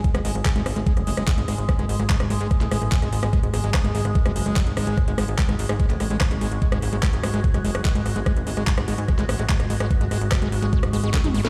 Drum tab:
HH |xxoxxxoxxxoxxxox|xxo-xxoxxxoxxxox|xxoxxxoxxxoxxxox|xxoxxxoxxxoxxxox|
CP |----x-------x---|----x----x--x---|----x-------x---|----x----x--x---|
SD |-r--r-r--r-r--r-|r--r-r--r-r--r-r|--r-r--r-r--r-r-|r-r--r-r--r-r---|
T1 |----------------|----------------|----------------|----------------|
BD |o---o---o---o---|o---o---o---o---|o---o---o---o---|o---o---o---o---|

HH |xxoxxxoxxxoxxxox|xxoxxxoxxxoxxxox|xxoxxxoxxxoxxxox|
CP |----x-------x---|----x----x--x---|----x-------x---|
SD |-r--r-r--r-r--r-|r--r-r--r-r--r-r|--r-r----r--o--o|
T1 |----------------|----------------|-------------o--|
BD |o---o---o---o---|o---o---o---o---|o---o---o---o---|